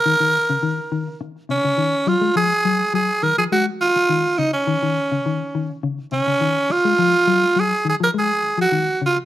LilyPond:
<<
  \new Staff \with { instrumentName = "Tenor saxophone" } { \time 4/4 \key ees \minor \tempo 4 = 104 bes'2 r8 des'4 f'8 | aes'4 aes'8 bes'16 aes'16 ges'8 f'4 ees'16 des'16~ | des'2 r8 des'4 f'8~ | f'4 aes'8 aes'16 bes'16 aes'8. ges'8. f'8 | }
  \new Staff \with { instrumentName = "Clean electric guitar" } { \clef bass \time 4/4 \key ees \minor ees16 ees8 des16 ees8 ees8 r8 c16 des16 ees8 ges16 aes16 | f8 ges8 ges8 ees16 f16 aes8 r8 ees8 des8 | ees16 ees8 des16 ees8 ees8 des8 c16 des16 ees8 r16 aes16 | f8 ges8 ges8 ees16 f16 aes8 r16 f16 ees8 des8 | }
>>